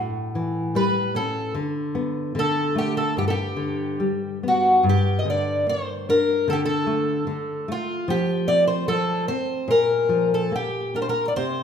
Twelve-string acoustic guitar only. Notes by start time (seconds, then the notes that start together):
0.76 B4
1.16 A4
2.39 A4
2.78 G4
2.97 A4
3.18 G4
3.28 G4 A4
4.48 F#4
4.89 G4
5.19 D#5
5.30 D5
5.69 C5
6.10 A#4
6.50 G4 A4
6.65 A4
7.72 F4
8.10 G4
8.48 D5
8.67 C5
8.88 A4
9.28 C5
9.71 A#4
10.34 A4
10.56 G4
10.96 A#4
11.02 C5
11.09 A#4
11.28 D5
11.36 C5